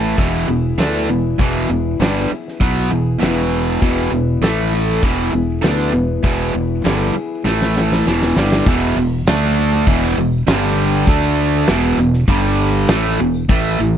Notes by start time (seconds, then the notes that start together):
Already playing: A1 A2 E3 A3 E4 A4
0.17 E1 E2 B2 E3 B3 E4 G#4, kick, closed hi-hat
0.47 E1 E2 B2 E3 B3 E4 G#4, closed hi-hat
0.78 D2 E2 B2 D3 E3 A3 B3 D4 E4 G#4, snare, closed hi-hat, tambourine
1.09 E1 E2 B2, closed hi-hat
1.38 E1 E2 B2 E3 B3 E4 G#4, kick, closed hi-hat
1.69 E1 E2 B2, closed hi-hat
1.99 G1 E2 G2 B2 D3 E3 G3 B3 E4 G#4, snare, closed hi-hat, tambourine
2.30 E3 B3 E4 G#4, muted distorted electric guitar stroke, muted fingered electric bass stroke, closed hi-hat
2.48 snare
2.60 B1 B2 E3 F#3 B3 E4 G#4, kick, closed hi-hat
2.90 E1 E2 B2 E3 B3 E4 G#4, closed hi-hat
3.19 E1 E2 B2 E3 B3 E4 G#4, snare, closed hi-hat, tambourine
3.53 closed hi-hat
3.82 E1 E2 B2 E3 B3 E4 G#4, kick, closed hi-hat
4.12 E1 E2 B2, closed hi-hat
4.41 A1 A2 E3 A3 E4 A4, snare, closed hi-hat, tambourine
4.73 A3 E4 A4, closed hi-hat
5.03 E1 E2 B2 E3 B3 G#4, kick, closed hi-hat
5.32 E1 E2 B2 E3 B3 E4 G#4, closed hi-hat
5.62 D2 E2 B2 D3 E3 A3 B3 D4 E4 G#4, snare, closed hi-hat, tambourine
5.92 E1 E2 B2, closed hi-hat
6.23 E1 E2 B2 E3 B3 E4 G#4, kick, closed hi-hat
6.54 E1 E2 B2, closed hi-hat
6.84 G1 E2 G2 B2 D3 E3 G3 B3 E4 G#4, snare, closed hi-hat, tambourine
7.14 E3 B3 E4 G#4, muted distorted electric guitar stroke, closed hi-hat
7.45 A1 A2 E3 A3 E4 A4, snare
7.62 snare
7.76 A3 E4 A4, snare
7.92 snare
8.05 E1 E2 B2 E3 B3 E4 G#4, snare, tambourine
8.22 snare
8.36 G1 G2 D3 G3, snare
8.52 snare
8.66 E1 E2 B2 E3, kick, crash
8.82 tambourine
8.97 E1 E2 B2, open hi-hat, tambourine
9.26 D2 D3 A3 D4, snare, open hi-hat, tambourine
9.56 open hi-hat, tambourine
9.73 snare
9.87 E1 E2 B2 E3, kick, open hi-hat, tambourine
10.02 tambourine
10.17 E1 E2 B2, open hi-hat, tambourine
10.32 tambourine
10.47 G1 G2 D3 G3, snare, open hi-hat, tambourine
10.77 open hi-hat
10.93 tambourine
11.06 D2 D3 A3 D4, kick, open hi-hat
11.23 tambourine
11.37 open hi-hat, tambourine
11.67 E1 E2 B2 E3, snare, open hi-hat, tambourine
11.97 E1 E2 B2, open hi-hat, tambourine
12.13 snare
12.27 G1 G2 D3 G3, kick, open hi-hat, tambourine
12.44 tambourine
12.58 open hi-hat, tambourine
12.88 A1 A2 E3 A3, snare, open hi-hat, tambourine
13.18 E1 E2 B2, open hi-hat
13.34 tambourine
13.49 A1 A2 E3 A3, kick, open hi-hat
13.65 tambourine
13.80 A1 A2 E3, open hi-hat, tambourine